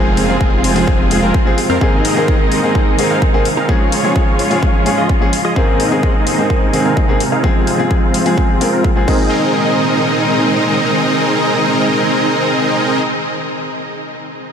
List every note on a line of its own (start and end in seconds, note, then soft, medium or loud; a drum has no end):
0.00 0.38 F1 medium
0.00 1.79 G#2 medium
0.00 3.65 C3 medium
0.00 0.26 F3 loud
0.00 1.79 F3 medium
0.00 0.26 G#3 medium
0.00 0.26 C4 medium
0.00 0.38 C4 medium
0.00 1.79 C4 medium
0.00 0.38 F4 medium
0.00 1.79 F4 medium
0.00 0.26 G#4 loud
0.00 0.38 G#4 medium
0.17 open hi-hat loud
0.28 0.73 F3 medium
0.28 0.73 G#3 medium
0.28 0.73 C4 medium
0.28 0.73 G#4 loud
0.41 0.85 F1 medium
0.41 0.85 C4 medium
0.41 0.85 F4 medium
0.41 0.85 G#4 medium
0.41 kick loud
0.64 open hi-hat loud
0.75 1.08 F3 medium
0.75 1.08 G#3 medium
0.75 1.08 C4 medium
0.75 1.08 G#4 loud
0.75 open hi-hat medium
0.88 1.20 F1 loud
0.88 1.20 C4 medium
0.88 1.20 F4 medium
0.88 1.20 G#4 medium
0.88 kick loud
1.10 1.43 F3 medium
1.10 1.43 G#3 medium
1.10 1.43 C4 medium
1.10 1.44 G#4 medium
1.10 open hi-hat loud
1.23 1.33 F1 medium
1.23 1.35 C4 medium
1.23 1.35 F4 medium
1.23 1.35 A#4 medium
1.34 kick loud
1.46 1.56 F3 medium
1.46 1.56 G#3 medium
1.46 1.57 C4 medium
1.46 1.57 G#4 loud
1.58 open hi-hat loud
1.70 1.79 F2 medium
1.70 1.78 C4 medium
1.70 1.78 F4 medium
1.70 1.78 A#4 loud
1.81 2.13 G#2 medium
1.81 2.13 D#3 medium
1.81 3.67 D#3 medium
1.81 3.67 G#3 medium
1.81 2.14 A#3 medium
1.81 3.67 A#3 medium
1.81 2.25 C4 medium
1.81 2.14 C4 medium
1.81 3.67 D#4 medium
1.81 2.25 D#4 medium
1.81 2.25 G#4 medium
1.81 2.14 G#4 loud
1.81 2.25 A#4 medium
1.81 kick loud
2.05 open hi-hat loud
2.16 2.60 G#2 medium
2.16 2.60 D#3 medium
2.16 2.61 A#3 medium
2.16 2.61 C4 medium
2.16 2.61 G#4 loud
2.28 2.72 C4 medium
2.28 2.72 D#4 medium
2.28 2.72 A#4 medium
2.28 2.72 D#5 loud
2.28 kick loud
2.52 open hi-hat medium
2.63 2.95 G#2 medium
2.63 2.96 D#3 medium
2.63 2.96 A#3 medium
2.63 2.96 C4 medium
2.63 2.96 G#4 medium
2.75 3.07 C4 medium
2.75 3.07 D#4 medium
2.75 3.07 G#4 medium
2.75 3.07 A#4 medium
2.75 3.07 D#5 medium
2.75 kick loud
2.98 3.31 G#2 medium
2.98 3.31 D#3 medium
2.98 3.31 A#3 medium
2.98 3.31 C4 medium
2.98 3.31 G#4 loud
2.98 open hi-hat loud
3.10 3.23 C4 medium
3.10 3.23 D#4 medium
3.10 3.23 G#4 medium
3.10 3.23 A#4 medium
3.10 3.23 F5 medium
3.22 kick loud
3.33 3.44 G#2 medium
3.33 3.44 D#3 medium
3.33 3.44 A#3 medium
3.33 3.44 C4 medium
3.33 3.44 G#4 loud
3.45 open hi-hat loud
3.57 3.66 C4 medium
3.57 3.66 D#4 medium
3.57 3.66 G#4 medium
3.57 3.66 A#4 medium
3.57 3.66 F5 medium
3.68 5.54 G#2 medium
3.68 5.54 C#3 medium
3.68 4.01 F3 medium
3.68 5.54 F3 medium
3.68 4.01 G#3 medium
3.68 5.54 C#4 medium
3.68 4.01 C#4 medium
3.68 4.13 F4 medium
3.68 5.54 F4 medium
3.68 4.13 G#4 medium
3.68 4.01 G#4 loud
3.68 4.13 C#5 medium
3.68 kick loud
3.92 open hi-hat loud
4.03 4.48 F3 medium
4.03 4.48 G#3 medium
4.03 4.48 C#4 medium
4.03 4.48 G#4 medium
4.16 4.60 F4 medium
4.16 4.60 G#4 medium
4.16 kick loud
4.39 open hi-hat loud
4.50 4.83 F3 medium
4.50 4.83 G#3 medium
4.50 4.83 C#4 medium
4.50 4.83 G#4 loud
4.50 open hi-hat medium
4.63 4.95 F4 medium
4.63 4.95 G#4 medium
4.63 4.95 C#5 medium
4.63 kick loud
4.85 5.18 F3 medium
4.85 5.18 G#3 medium
4.85 5.18 C#4 medium
4.85 5.19 G#4 medium
4.85 open hi-hat medium
4.98 5.10 F4 medium
4.98 5.10 G#4 medium
4.98 5.10 D#5 loud
5.09 kick loud
5.21 5.31 F3 medium
5.21 5.31 G#3 medium
5.21 5.32 C#4 medium
5.21 5.32 G#4 loud
5.33 open hi-hat medium
5.45 5.53 F4 medium
5.45 5.53 G#4 medium
5.45 5.53 D#5 loud
5.56 5.88 G#2 medium
5.56 9.04 C3 medium
5.56 5.88 D#3 medium
5.56 7.42 D#3 medium
5.56 7.42 G#3 medium
5.56 7.42 A#3 medium
5.56 5.89 A#3 medium
5.56 6.00 C4 medium
5.56 5.89 C4 medium
5.56 7.42 D#4 medium
5.56 6.00 D#4 medium
5.56 6.00 G#4 medium
5.56 5.89 G#4 loud
5.56 6.00 A#4 medium
5.56 6.00 D#5 medium
5.56 kick loud
5.80 open hi-hat loud
5.91 6.35 G#2 medium
5.91 6.35 D#3 medium
5.91 6.36 A#3 medium
5.91 6.36 C4 medium
5.91 6.36 G#4 medium
6.03 6.47 C4 medium
6.03 6.47 D#4 medium
6.03 6.47 G#4 medium
6.03 6.47 A#4 medium
6.03 6.47 D#5 loud
6.03 kick loud
6.27 open hi-hat medium
6.38 6.70 G#2 medium
6.38 6.70 D#3 medium
6.38 6.71 A#3 medium
6.38 6.71 C4 medium
6.38 6.71 G#4 medium
6.50 6.82 C4 medium
6.50 6.82 D#4 medium
6.50 6.82 G#4 medium
6.50 6.82 A#4 medium
6.50 6.82 D#5 medium
6.50 kick loud
6.73 7.05 G#2 medium
6.73 7.06 D#3 medium
6.73 7.06 A#3 medium
6.73 7.06 C4 medium
6.73 7.06 G#4 medium
6.73 open hi-hat medium
6.85 6.98 C4 medium
6.85 6.98 D#4 medium
6.85 6.98 G#4 medium
6.85 6.98 A#4 medium
6.85 6.98 F5 loud
6.97 kick loud
7.08 7.19 G#2 medium
7.08 7.19 D#3 medium
7.08 7.19 A#3 medium
7.08 7.19 C4 medium
7.08 7.19 G#4 loud
7.20 open hi-hat medium
7.32 7.41 C4 medium
7.32 7.41 D#4 medium
7.32 7.41 G#4 medium
7.32 7.41 A#4 medium
7.32 7.41 F5 loud
7.43 9.06 G#2 medium
7.43 7.76 F3 medium
7.43 9.06 F3 medium
7.43 7.76 G#3 medium
7.43 9.06 C4 medium
7.43 7.88 C4 medium
7.43 7.76 C4 medium
7.43 9.06 F4 medium
7.43 7.76 G#4 loud
7.43 kick loud
7.67 open hi-hat medium
7.78 8.23 F3 medium
7.78 8.23 G#3 medium
7.78 8.23 C4 medium
7.78 8.23 G#4 loud
7.91 8.35 C4 medium
7.91 8.35 F4 medium
7.91 8.35 G#4 loud
7.91 kick loud
8.14 open hi-hat loud
8.25 8.58 F3 medium
8.25 8.58 G#3 medium
8.25 8.58 C4 medium
8.25 8.58 G#4 medium
8.25 open hi-hat medium
8.38 8.70 C4 medium
8.38 8.70 G#4 medium
8.38 kick loud
8.60 8.93 F3 medium
8.60 8.93 G#3 medium
8.60 8.93 C4 medium
8.60 8.94 A#4 medium
8.60 open hi-hat medium
8.73 8.85 C4 medium
8.73 8.85 F4 medium
8.73 8.85 A#4 medium
8.84 kick loud
8.96 9.05 F3 medium
8.96 9.05 G#3 medium
8.96 9.05 C4 medium
8.96 9.05 G#4 medium
9.06 13.00 A#2 medium
9.06 12.99 D#3 medium
9.06 13.00 D#3 medium
9.06 13.00 G#3 medium
9.06 13.00 A#3 medium
9.06 13.00 C4 medium
9.06 13.01 C4 medium
9.06 13.00 D#4 medium
9.06 13.00 G#4 medium
9.06 13.02 G#4 medium
9.06 13.00 A#4 medium
9.06 13.00 D#5 loud
9.06 kick loud
9.06 crash medium